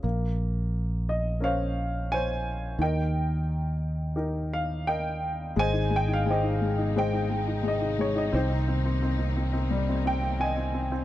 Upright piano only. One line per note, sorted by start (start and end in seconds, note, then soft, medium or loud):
0.03 2.76 A#3 medium
1.09 1.41 D#5 medium
1.40 2.76 C#4 medium
1.40 2.75 A#4 soft
1.40 2.14 F5 medium
1.44 2.13 C5 medium
1.44 2.12 C#5 medium
2.12 2.78 C5 medium
2.12 2.78 C#5 medium
2.12 2.83 G#5 medium
2.79 5.53 D#3 medium
2.79 4.85 D#5 medium
2.79 4.85 G5 medium
2.83 4.16 A#4 medium
4.16 5.52 D#4 soft
4.16 5.52 G4 soft
4.16 4.87 A#4 medium
4.53 4.89 F5 medium
4.87 5.54 A#4 medium
4.87 5.54 D#5 medium
4.87 5.59 G5 medium
5.56 5.89 G#3 medium
5.56 6.29 C5 medium
5.56 6.29 D#5 medium
5.56 5.94 G#5 loud
5.73 6.06 D#4 medium
5.90 6.24 G#3 medium
5.96 6.12 G5 medium
6.08 6.42 D#4 medium
6.14 6.29 F5 medium
6.26 6.60 G#3 medium
6.30 7.63 G4 medium
6.30 6.96 C5 medium
6.30 6.94 D#5 medium
6.43 6.76 D#4 medium
6.61 6.95 G#3 soft
6.78 7.12 D#4 medium
6.96 7.28 G#3 medium
6.96 8.31 C5 medium
6.96 7.66 D#5 medium
6.96 7.68 G5 medium
7.13 7.46 D#4 medium
7.30 7.62 G#3 soft
7.48 7.79 D#4 soft
7.63 7.97 G#3 medium
7.68 8.02 D#5 medium
7.81 8.14 D#4 medium
7.99 8.33 G#3 soft
7.99 8.18 C#5 medium
8.15 8.33 D#4 medium
8.15 8.35 D#5 medium
8.32 8.49 C4 medium
8.32 9.69 D#4 medium
8.32 9.69 G4 soft
8.32 8.99 C5 medium
8.50 8.67 C4 medium
8.68 8.84 C4 medium
8.85 9.01 C4 medium
9.02 9.17 C4 medium
9.19 9.35 C4 medium
9.37 9.52 C4 medium
9.53 9.88 C4 medium
9.71 11.04 G3 medium
9.89 10.04 C4 soft
10.05 10.20 C4 soft
10.05 10.43 G5 medium
10.21 10.38 C4 soft
10.40 10.55 C4 medium
10.40 11.04 D#5 medium
10.40 11.04 G#5 medium
10.56 10.73 C4 soft
10.74 10.90 C4 soft
10.92 11.04 C4 medium